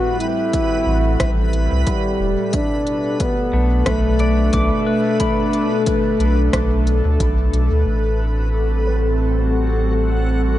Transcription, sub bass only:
0, 0, Header, 1, 2, 480
1, 0, Start_track
1, 0, Tempo, 666667
1, 1824, Time_signature, 4, 2, 24, 8
1, 7622, End_track
2, 0, Start_track
2, 0, Title_t, "Sub bass"
2, 0, Program_c, 0, 38
2, 622, Note_on_c, 0, 33, 101
2, 838, Note_off_c, 0, 33, 0
2, 866, Note_on_c, 0, 33, 90
2, 1215, Note_off_c, 0, 33, 0
2, 1238, Note_on_c, 0, 36, 84
2, 1331, Note_off_c, 0, 36, 0
2, 1581, Note_on_c, 0, 28, 77
2, 1702, Note_off_c, 0, 28, 0
2, 2541, Note_on_c, 0, 35, 101
2, 2758, Note_off_c, 0, 35, 0
2, 2785, Note_on_c, 0, 35, 85
2, 3245, Note_off_c, 0, 35, 0
2, 3265, Note_on_c, 0, 35, 102
2, 3384, Note_off_c, 0, 35, 0
2, 4462, Note_on_c, 0, 35, 103
2, 4678, Note_off_c, 0, 35, 0
2, 4705, Note_on_c, 0, 35, 89
2, 5054, Note_off_c, 0, 35, 0
2, 5076, Note_on_c, 0, 38, 82
2, 5170, Note_off_c, 0, 38, 0
2, 5184, Note_on_c, 0, 35, 90
2, 5399, Note_off_c, 0, 35, 0
2, 5421, Note_on_c, 0, 35, 100
2, 5542, Note_off_c, 0, 35, 0
2, 5556, Note_on_c, 0, 38, 96
2, 5650, Note_off_c, 0, 38, 0
2, 5659, Note_on_c, 0, 33, 74
2, 7622, Note_off_c, 0, 33, 0
2, 7622, End_track
0, 0, End_of_file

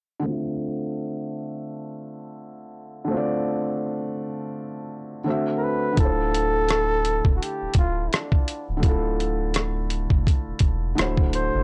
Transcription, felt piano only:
0, 0, Header, 1, 2, 480
1, 0, Start_track
1, 0, Key_signature, -1, "minor"
1, 0, Tempo, 714286
1, 175, Time_signature, 4, 2, 24, 8
1, 7818, End_track
2, 0, Start_track
2, 0, Title_t, "Felt piano"
2, 0, Program_c, 0, 0
2, 131, Note_on_c, 0, 50, 63
2, 151, Note_on_c, 0, 57, 54
2, 173, Note_on_c, 0, 60, 55
2, 192, Note_on_c, 0, 65, 58
2, 212, Note_on_c, 0, 76, 75
2, 317, Control_c, 0, 64, 127
2, 2038, Note_off_c, 0, 50, 0
2, 2048, Note_on_c, 0, 50, 66
2, 2056, Note_off_c, 0, 57, 0
2, 2067, Note_off_c, 0, 60, 0
2, 2070, Note_on_c, 0, 57, 67
2, 2077, Note_off_c, 0, 65, 0
2, 2087, Note_off_c, 0, 76, 0
2, 2089, Note_on_c, 0, 60, 63
2, 2109, Note_on_c, 0, 65, 58
2, 2130, Note_on_c, 0, 74, 78
2, 3485, Note_off_c, 0, 50, 0
2, 3496, Note_off_c, 0, 57, 0
2, 3505, Note_off_c, 0, 60, 0
2, 3515, Note_off_c, 0, 65, 0
2, 3521, Note_on_c, 0, 50, 62
2, 3526, Note_off_c, 0, 74, 0
2, 3532, Note_on_c, 0, 57, 59
2, 3541, Note_on_c, 0, 60, 62
2, 3544, Control_c, 0, 64, 0
2, 3552, Note_on_c, 0, 66, 61
2, 3562, Note_on_c, 0, 76, 73
2, 3655, Control_c, 0, 64, 127
2, 3972, Note_off_c, 0, 50, 0
2, 3982, Note_on_c, 0, 50, 58
2, 3991, Note_off_c, 0, 57, 0
2, 4001, Note_on_c, 0, 57, 54
2, 4018, Note_off_c, 0, 60, 0
2, 4022, Note_on_c, 0, 64, 57
2, 4024, Note_off_c, 0, 66, 0
2, 4024, Control_c, 0, 64, 0
2, 4029, Note_off_c, 0, 76, 0
2, 4043, Note_on_c, 0, 65, 52
2, 4063, Note_on_c, 0, 72, 66
2, 4157, Control_c, 0, 64, 127
2, 5882, Note_off_c, 0, 50, 0
2, 5892, Note_on_c, 0, 50, 72
2, 5901, Note_off_c, 0, 57, 0
2, 5912, Note_off_c, 0, 64, 0
2, 5913, Note_on_c, 0, 57, 66
2, 5922, Note_off_c, 0, 65, 0
2, 5933, Note_off_c, 0, 72, 0
2, 5933, Note_on_c, 0, 64, 61
2, 5954, Note_on_c, 0, 65, 65
2, 5975, Note_on_c, 0, 69, 76
2, 7327, Note_off_c, 0, 50, 0
2, 7337, Note_off_c, 0, 57, 0
2, 7347, Note_off_c, 0, 64, 0
2, 7358, Note_off_c, 0, 65, 0
2, 7360, Note_on_c, 0, 50, 71
2, 7368, Note_off_c, 0, 69, 0
2, 7369, Note_on_c, 0, 57, 63
2, 7379, Note_on_c, 0, 64, 64
2, 7385, Control_c, 0, 64, 0
2, 7389, Note_on_c, 0, 66, 62
2, 7401, Note_on_c, 0, 72, 76
2, 7519, Control_c, 0, 64, 127
2, 7818, Note_off_c, 0, 50, 0
2, 7818, Note_off_c, 0, 57, 0
2, 7818, Note_off_c, 0, 64, 0
2, 7818, Note_off_c, 0, 66, 0
2, 7818, Note_off_c, 0, 72, 0
2, 7818, End_track
0, 0, End_of_file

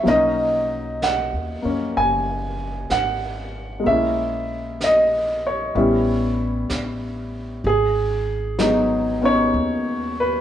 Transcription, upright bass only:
0, 0, Header, 1, 2, 480
1, 0, Start_track
1, 0, Tempo, 947867
1, 29, Time_signature, 4, 2, 24, 8
1, 5271, End_track
2, 0, Start_track
2, 0, Title_t, "Upright bass"
2, 0, Program_c, 0, 32
2, 28, Note_on_c, 0, 35, 69
2, 649, Note_off_c, 0, 35, 0
2, 674, Note_on_c, 0, 39, 47
2, 821, Note_off_c, 0, 39, 0
2, 834, Note_on_c, 0, 42, 51
2, 981, Note_off_c, 0, 42, 0
2, 998, Note_on_c, 0, 30, 66
2, 1454, Note_off_c, 0, 30, 0
2, 1471, Note_on_c, 0, 32, 57
2, 1930, Note_off_c, 0, 32, 0
2, 1955, Note_on_c, 0, 34, 70
2, 2891, Note_off_c, 0, 34, 0
2, 2913, Note_on_c, 0, 33, 71
2, 3371, Note_off_c, 0, 33, 0
2, 3392, Note_on_c, 0, 33, 59
2, 3850, Note_off_c, 0, 33, 0
2, 3870, Note_on_c, 0, 32, 76
2, 4808, Note_off_c, 0, 32, 0
2, 4829, Note_on_c, 0, 39, 68
2, 5271, Note_off_c, 0, 39, 0
2, 5271, End_track
0, 0, End_of_file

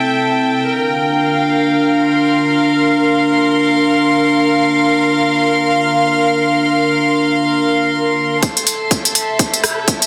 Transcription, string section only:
0, 0, Header, 1, 2, 480
1, 0, Start_track
1, 0, Tempo, 500000
1, 9663, End_track
2, 0, Start_track
2, 0, Title_t, "String section"
2, 0, Program_c, 0, 48
2, 0, Note_on_c, 0, 69, 84
2, 0, Note_on_c, 0, 76, 73
2, 0, Note_on_c, 0, 79, 74
2, 656, Note_on_c, 0, 70, 77
2, 657, Note_off_c, 0, 69, 0
2, 657, Note_off_c, 0, 76, 0
2, 1139, Note_on_c, 0, 77, 79
2, 1945, Note_on_c, 0, 84, 78
2, 2334, Note_off_c, 0, 79, 0
2, 8089, Note_off_c, 0, 70, 0
2, 8090, Note_off_c, 0, 77, 0
2, 8090, Note_on_c, 0, 69, 77
2, 8472, Note_on_c, 0, 76, 82
2, 9209, Note_off_c, 0, 84, 0
2, 9663, Note_off_c, 0, 69, 0
2, 9663, Note_off_c, 0, 76, 0
2, 9663, End_track
0, 0, End_of_file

